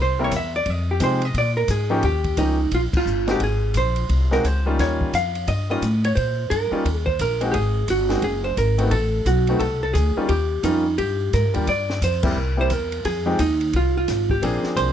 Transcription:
Already playing: C2
0.02 C5
0.19 G3 A#3 C4 E4 A#4
0.24 C#5
0.31 E2, kick, hi-hat pedal, ride
0.36 E5
0.56 D5
0.66 F2, kick, ride
0.70 D#5
0.91 G4
1.00 C3 F3 G#3 C4 D#4 G4 C5, kick, hi-hat pedal, ride
1.22 D#5, ride
1.34 A#2, kick, ride
1.38 D5
1.57 A#4
1.68 G#2 G#4, kick, hi-hat pedal, ride
1.90 F3 A#3 C#4 D#4 G4
2.03 D#2 G4, kick, ride
2.24 kick, ride
2.37 C#2 F3 A#3 C#4 D#4 G4, kick, hi-hat pedal, ride
2.71 A#1 F4, kick, ride
2.93 F4, muted upright bass stroke, kick, crash
3.05 G1, hi-hat pedal
3.27 G#3 A#3 C4 D#4 F#4 G4, snare, ride
3.40 G#1 G#4, kick, ride
3.74 A#1 C5, kick, hi-hat pedal, ride
3.96 ride
4.09 C2, kick, ride
4.31 G#3 A#3 C4 D#4 F#4 A#4, snare
4.44 C#2 C5, kick, hi-hat pedal, ride
4.66 G3 A#3 C#4 D#4 F4
4.79 D#2 C#5, kick, snare, ride
5.01 kick
5.13 F2 F5, kick, hi-hat pedal, ride
5.35 ride
5.48 G2 D#5, kick, ride
5.70 G3 A#3 C#4 D#4 F4 D#5
5.82 A2, kick, hi-hat pedal, ride
6.04 C#5, ride
6.15 A#2 C5, kick, ride
6.50 G2 A#4, kick, hi-hat pedal, ride
6.71 G3 A#3 C#4 D#4 F4, muted upright bass stroke
6.85 D#2, kick, ride
7.06 C5, kick
7.19 A#1 A#4, kick, hi-hat pedal, ride
7.41 G#3 A#3 C4 D#4 F#4, ride
7.51 G#1 G4 G#4, kick, ride
7.88 G1 F#4, kick, hi-hat pedal, ride
8.09 G#3 A#3 C4 D#4 F#4, snare, ride
8.22 F#1 G#4, kick, ride
8.44 C5
8.57 G#1 A#4, kick, hi-hat pedal, ride
8.78 A3 B3 C4 D#4 F#4, ride
8.91 A1 A4, kick, ride
9.25 B1 F#4, kick, hi-hat pedal, ride
9.47 A3 B3 C4 D#4 F#4, ride
9.59 C2 A4, kick, ride
9.83 A4
9.94 D2 G#4, kick, hi-hat pedal, ride
10.16 G3 A#3 C#4 D#4 F4, muted upright bass stroke
10.29 D#2 G4, kick, ride
10.63 F2 G3 A#3 C#4 D#4 F4, kick, hi-hat pedal, ride
10.98 G2 G4, kick, ride
11.33 G#2 A#4, kick, hi-hat pedal, ride
11.45 G2
11.54 D#2 G3 A#3 D4 F4 G4, ride
11.67 G2 D5, kick, ride
11.90 snare
12.01 F2 C5, kick, hi-hat pedal, ride
12.23 G3 A#3 C4 E4 G4 A#4, kick, crash
12.35 C2
12.57 G3 A#3 C4 E4 G4 C5
12.70 E2 A#4, kick, hi-hat pedal, ride
12.92 ride
13.05 F2 G#4, kick, ride
13.26 F3 G#3 C4 D#4 G4
13.39 D#2 D#4, kick, hi-hat pedal, ride
13.61 ride
13.73 C2 F4, kick, ride
13.97 F4
14.08 G#1, kick, snare, hi-hat pedal, ride
14.30 G4, kick
14.42 A#1 F3 A#3 C4 D4 G#4, kick, ride
14.64 muted upright bass stroke, snare
14.76 C2 C5, kick, hi-hat pedal, ride

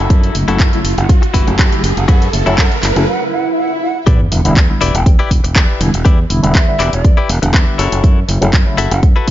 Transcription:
Already playing: E4 F#4 A4, riser
0.10 F#2, kick, closed hi-hat
0.23 closed hi-hat
0.35 F#1 C#3 F#3 A3 E4, open hi-hat
0.48 F#1 C#3 F#3 A3 E4 F#4 A4, closed hi-hat
0.60 F#2, kick, clap, closed hi-hat
0.73 C#3 F#3 A3 E4, closed hi-hat
0.84 F#1, open hi-hat
0.98 F#1 F#5, closed hi-hat
1.09 muted clean electric guitar stroke, kick, closed hi-hat
1.22 muted clean electric guitar stroke, closed hi-hat
1.34 F#1 C#3 F#3 A3 E4 F#4 B4, kick, open hi-hat
1.47 F#1 C#3 F#3 A3 E4, closed hi-hat
1.58 F#2 E4 F#4 A4, kick, clap, closed hi-hat
1.72 C#3 F#3 A3 E4, closed hi-hat
1.83 F#1, muted clean electric guitar stroke, open hi-hat
1.97 F#1 F#5, closed hi-hat
2.08 F#2 E4 F#4 B4 F#5, kick, closed hi-hat
2.22 closed hi-hat
2.33 F#1 C#3 F#3 A3 E4, open hi-hat
2.46 F#1 C#3 F#3 A3 E4 F#4 A4, closed hi-hat
2.58 F#2 F#5, kick, clap, closed hi-hat
2.72 closed hi-hat
2.82 F#1 C#3 F#3 A3 E4, clap, open hi-hat
2.96 F#1 C#3 F#3 A3 E4, closed hi-hat
3.07 F#5, swell
3.32 F#5
3.57 F#5
3.82 F#5
4.07 E2 E4 G4 B4 D5, kick, closed hi-hat, sub drop
4.31 E1 D3 G3 B3 E4, muted clean electric guitar stroke, open hi-hat
4.45 E1 D3 G3 B3 E4, closed hi-hat
4.57 E2, kick, clap, closed hi-hat
4.69 D3 G3 B3 E4
4.81 E1 E4 G4 B4 D5, open hi-hat
4.94 E1 G5, closed hi-hat
5.06 E2, muted clean electric guitar stroke, kick, closed hi-hat
5.19 E4 G4 B4 D5
5.31 E1, kick, open hi-hat
5.44 E1, muted clean electric guitar stroke, closed hi-hat
5.55 E2 E4 G4 B4 D5, kick, clap, closed hi-hat
5.80 E1 D3 G3 B3 E4, open hi-hat
5.94 E1, closed hi-hat
6.05 E2 E4 G4 B4 D5, kick, closed hi-hat
6.30 E1 D3 G3 B3 E4, muted clean electric guitar stroke, open hi-hat
6.43 E1 D3 G3 B3 E4, closed hi-hat
6.55 E2 E5, kick, clap, closed hi-hat
6.68 D3 G3 B3 E4
6.79 E1 E4 G4 B4 D5, clap, open hi-hat
6.93 E1 D5, closed hi-hat
7.04 E2, muted clean electric guitar stroke, kick, closed hi-hat
7.17 E4 G4 B4 D5
7.29 E1, open hi-hat
7.42 E1 D3 G3 B3 F#5, muted clean electric guitar stroke, closed hi-hat
7.53 E2 E4 G4 B4 E5, kick, clap, closed hi-hat
7.78 F#1 E4 F#4 A4 C#5, open hi-hat
7.92 F#1, closed hi-hat
8.04 F#2, kick, closed hi-hat
8.28 F#1 C#3 F#3 A3 E4, muted clean electric guitar stroke, open hi-hat
8.41 F#1 C#3 F#3 A3 E4, closed hi-hat
8.53 F#2, kick, clap, closed hi-hat
8.66 C#3 F#3 A3 E4
8.77 F#1 E4 F#4 A4 E5, open hi-hat
8.91 F#1 F#5, closed hi-hat
9.03 F#2, muted clean electric guitar stroke, kick, closed hi-hat
9.16 E4 F#4 A4 B4
9.28 F#1, kick, open hi-hat

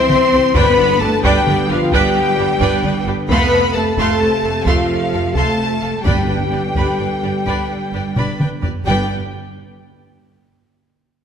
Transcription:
Already playing: E3 C4 C5 C6
0.09 C2 C4 C5 E5, taiko mid
0.33 C2 C4 G4 C5
0.55 G1 G2 D3 B3 D4 B4 D5 G5 B5, taiko
0.78 G1 D4 B4 D5
1.01 G1 A3 D4 G4 A4 B4 A5
1.23 G1 G3 D4 G4 B4 D5 G5, taiko
1.47 G1 D4 B4 D5, taiko mid
1.70 G1 F3 D4 F4 G4 B4 F5, taiko mid
1.92 G1 G3 D4 G4 B4 D5 G5, taiko
2.38 G1 D4 G4 B4
2.60 G1 D4 B4 D5 G5, taiko
2.83 G1 D4 B4 D5, taiko mid
3.06 G1 D4 G4 B4
3.28 F1 C3 A3 B3 A4 B4 F5 B5 C6, taiko
3.52 F1 A3 A4 C5 A5
3.74 F1 A3 A4 F5 A5
3.78 A4
3.97 F1 A3 A4 F5 A5 C6, taiko
4.20 F1 A3 A4 C5 A5
4.43 F1 A3 A4 F5
4.65 F1 F3 A3 F4 A4 F5 C6, taiko
5.12 F1 A3 A4 F5
5.34 F1 A3 A4 F5 A5 C6, taiko
5.58 F1 A3 A4 C5 A5
5.82 F1 A3 A4 F5
6.02 G1 G2 G3 D4 G4 B4 D5 G5 B5, taiko
6.07 D3 B3
6.29 G1 D4 B4 G5
6.52 G1 D4 G4 B4 D5
6.76 G1 D4 B4 D5 B5, taiko
6.99 G1 D4 B4 G5
7.23 G1 D4 G4 B4 D5
7.46 G1 D4 B4 D5 B5, taiko
7.93 G1 D4 G4 B4 D5
8.16 G1 D4 B4 D5 B5, taiko low-mid
8.39 G1 D4 B4 G5, taiko mid
8.63 G1 D4 G4 B4 D5, taiko low
8.84 G1 G2 D3 G3 B3 D4 G4 B4 D5 G5

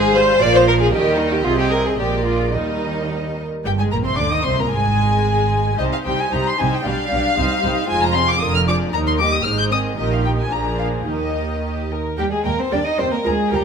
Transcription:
Already playing: G#1 G#2 G#3 G#4 C5 F5
0.14 G3 C5
0.41 A#1 A#2 F3 A#4 D5 F5
0.55 C5
0.68 A#4
0.81 G#4
0.93 D#2 D#3 G3 G4 A#4 D#5
1.18 D#4
1.32 G4
1.44 C2 C3 C4 F4 G#4 D#5
1.59 G4
1.71 A#4
1.86 G#4
1.98 A#1 A#2 G#3 G4 A#4 D5
2.27 F4
2.54 D#2 G3 D#4 A#4 D#5
3.65 G1 G2 G3 G4 G5
3.79 G#2 G#3 G#4 G#5
3.92 A#1 A#2 A#3 A#4 A#5
4.04 C3 C4 C5 C6
4.17 D2 D3 D4 D5 D6
4.32 D#3 D#4 D#5 D#6
4.44 C2 C3 C4 C5 C6
4.59 A#2 A#3 A#4 A#5
4.72 G#1 G#2 G#3 G#4 G#5
5.79 C2 C3 G3 D#4 G4 C5 D#5
5.93 F5
6.05 C2 C3 G3 D#4 G4 C5 G5
6.21 G#5
6.31 C2 C3 G3 D#4 G4 C5 A#5
6.48 C6
6.59 C2 C3 G3 D#4 G4 C5 G#5
6.73 G5
6.85 B1 B2 G3 D4 G4 D5 F5
7.11 B1 B2 G3 D4 G4 D5
7.37 C2 C3 G3 D#4 G4 C5
7.63 C2 C3 G3 D#4 G4 C5
7.89 F1 F2 G#3 F4 C5 G#5
8.04 A#5
8.15 F3 C4 G#4 F5 C6
8.30 D6
8.40 F1 F2 D3 F4 A#4 D#6
8.55 F6
8.67 F3 D4 G#4 D5 D6
8.93 D#2 A#3 D#4 A#4 A#5
9.08 C6
9.19 G3 A#3 G4 D#5 D6
9.34 D#6
9.44 G#1 G#2 G#3 D#4 C5 F6
9.59 G6
9.72 D#3 C4 G#4 D#5 D#6
9.98 A#1 A#2 D#3 D#4 G4 A#4 D#5
10.13 F5
10.26 G5
10.40 G#5
10.51 A#1 A#2 F3 D4 G#4 A#4 A#5
10.79 F5
11.05 D#2 D#3 D#4 G4 A#4 D#5
11.63 G4
11.91 A#4
12.18 D#2 G3 G4 A#4 G5
12.32 G#3 G#4
12.45 D#2 G3 A#3 A#4 G5
12.59 C4 C5
12.71 D#2 G3 D4 A#4 D5 G5
12.86 D#4 D#5
12.98 D#2 G3 C4 A#4 C5 G5
13.12 A#3 A#4
13.24 D2 F3 G#3 G#4 A#4 A#5
13.51 D2 F3 G3 G4 A#4 A#5

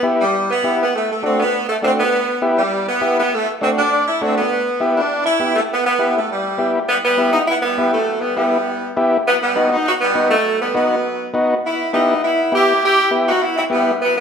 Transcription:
0.03 B3 E4 G4
0.21 G3
0.50 B3
0.64 B3 E4 G4
0.81 B3
0.95 A3
1.11 A3
1.23 A3 C4 D4 F#4
1.40 B3
1.69 A3
1.82 A3 C4 D4 F#4
1.99 B3
2.42 B3 E4 G4
2.57 G3
2.87 B3
3.01 B3 E4 G4
3.18 B3
3.33 A3
3.61 A3 C4 D4 F#4
3.77 D4
4.06 E4
4.21 A3 C4 D4 F#4
4.37 B3
4.80 B3 E4 G4
4.97 D4
5.25 E4
5.40 B3 E4 G4
5.55 A3
5.72 B3
5.85 B3
5.99 B3 E4 G4
6.15 A3
6.30 G3
6.58 B3 E4 G4
6.89 G3 B3
7.03 G3 B3
7.18 B3 E4 G4
7.32 B3 D#4
7.47 B3 E4
7.62 G3 B3
7.78 B3 E4 G4
7.91 F#3 A3
8.21 G3 B3
8.36 G3 B3 E4 G4
8.97 B3 E4 G4
9.27 F#3 B3
9.41 G3 B3
9.56 B3 D#4 F#4
9.70 B3 D#4
9.87 D#4 F#4
10.01 G3 B3
10.15 B3 D#4 F#4
10.30 F#3 A3
10.60 G3 B3
10.74 F#3 B3 D#4 F#4
11.34 B3 D#4 F#4
11.64 B3 E4
11.93 B3 D#4 E4 G4
12.24 B3 E4
12.52 B3 E4 G4
12.84 E4 G4
13.11 B3 E4 G4
13.28 D#4 F#4
13.42 B3 E4
13.57 C4 E4
13.70 G3 B3 E4 G4
14.01 F#3 B3
14.16 G3 B3

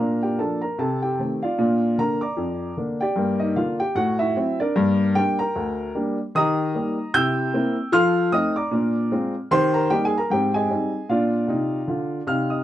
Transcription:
Already playing: A#2 A#4 F5 A#5
0.00 D4
0.23 G4 G5
0.38 F3 A#3 D4 A4 A5
0.61 A#4 A#5
0.78 C3 A4 A5
1.02 G4 G5
1.19 D#3 A3 C4
1.43 F4 D5 F5
1.58 A#2 D4
1.98 D3 A#3 D4 A#4 A#5
2.21 D5 A#5 D6
2.37 F2
2.77 D3 A#3 D4
3.01 G4 D5 G5
3.16 G2 A#3
3.39 D#4 D#5
3.56 D3 A#3 D4 F4 F5
3.80 G4 G5
3.95 A2 F#4 F#5
4.19 E4 E5
4.36 F#3 C4
4.60 D4 A#4 D5
4.76 G2 A#3
5.15 G3 A#3 D4 G4 G5
5.39 A#4 G5 A#5
5.55 D2
5.95 G3 A#3 D4
6.35 D#3 G4 D#5 A#5 D#6
6.75 G3 A#3 D#4
7.14 C3 E4 G5 E6 G6
7.54 A#3 C4 E4
7.92 F3 A4 F5 C6 F6
8.32 A3 C4 D#4 D#5 D#6
8.56 D5 A#5 D6
8.71 A#2 D4
9.12 G#3 C4 F4
9.51 D#3 G4 C5 C6
9.74 A#4 A#5
9.90 G3 A#3 D#4 G4 G5
10.05 G#4 G#5
10.18 A#4 A#5
10.30 G#2 C4 G4 G5
10.54 G#4 D#5 G#5
10.70 G3 C4 D#4
11.09 A#2 D4 F4 D5 F5
11.48 C3 D#4
11.87 D3 F4
12.27 C3 D#4 F5 F6
12.50 D#5 D#6

